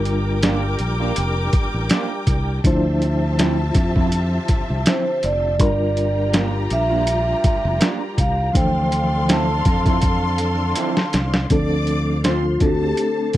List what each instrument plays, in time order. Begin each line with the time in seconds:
Already playing: fingered electric bass G1, reed electric piano G3 D4 F4 A#4, tonewheel organ G3 D4 G4 A#4, string section A#4 G5 D6
0.05 closed hi-hat
0.43 clean electric guitar A#3 D4 F4, snare, closed hi-hat
0.79 fingered electric bass A#1, closed hi-hat
1.00 clean electric guitar A#3 D4 F4
1.16 fingered electric bass F1, closed hi-hat
1.53 kick, closed hi-hat
1.74 fingered electric bass A1
1.89 clean electric guitar A#3 D4 F4, snare, closed hi-hat
2.27 fingered electric bass C2, kick, closed hi-hat
2.63 fingered electric bass D2, tonewheel organ D3 C4 E5, reed electric piano F3 D4 E4 C5, string section F4 E5 A5, kick, closed hi-hat
3.02 closed hi-hat
3.38 clean electric guitar F3 C4 E4, snare, closed hi-hat
3.75 fingered electric bass F2, kick, closed hi-hat
3.96 clean electric guitar F3 C4 E4, kick
4.12 closed hi-hat
4.48 muted fingered electric bass stroke, kick, closed hi-hat
4.70 fingered electric bass C2
4.86 clean electric guitar F3 C4 E4, vibraphone C5, snare, closed hi-hat
5.23 fingered electric bass F1, vibraphone D5, closed hi-hat
5.59 fingered electric bass G1, reed electric piano G3 D4 F4 A#4, tonewheel organ G3 D4 F4 A#4, string section F4 G4 A#5, kick, closed hi-hat
5.97 closed hi-hat
6.33 clean electric guitar A#3 D4 F4, snare, closed hi-hat
6.70 fingered electric bass A#1, vibraphone E5, closed hi-hat
6.90 clean electric guitar A#3 D4 F4
7.07 closed hi-hat
7.44 muted fingered electric bass stroke, kick, closed hi-hat
7.65 fingered electric bass F1
7.80 clean electric guitar A#3 D4 F4, snare, closed hi-hat
8.18 fingered electric bass C2, vibraphone F5, kick, closed hi-hat
8.53 fingered electric bass D2, tonewheel organ D3 C4 D4 F5, reed electric piano E3 F3 D4 C5, string section A4 F5 C6, vibraphone G5, kick, closed hi-hat
8.92 closed hi-hat
9.28 clean electric guitar F3 C4 E4, vibraphone A5, snare, closed hi-hat
9.65 fingered electric bass F2, kick, closed hi-hat
9.85 clean electric guitar F3 C4 E4, kick, closed hi-hat
10.02 kick, closed hi-hat
10.38 closed hi-hat
10.75 clean electric guitar F3 C4 E4, closed hi-hat
10.97 snare
11.13 fingered electric bass C2, snare, closed hi-hat
11.34 snare
11.50 fingered electric bass D2, tonewheel organ D3 A3 C4 F4, reed electric piano F3 C4 D4 A4, string section D5 D6, kick, closed hi-hat
11.87 closed hi-hat
12.24 clean electric guitar C4 F4 A4, vibraphone F4, string section C5 C6, snare, closed hi-hat
12.60 fingered electric bass D2, reed electric piano A3 C4 D4 A4, vibraphone F#4, tonewheel organ A4, string section A4 A5, kick, closed hi-hat
12.83 vibraphone G4
12.97 vibraphone A4, closed hi-hat
13.33 closed hi-hat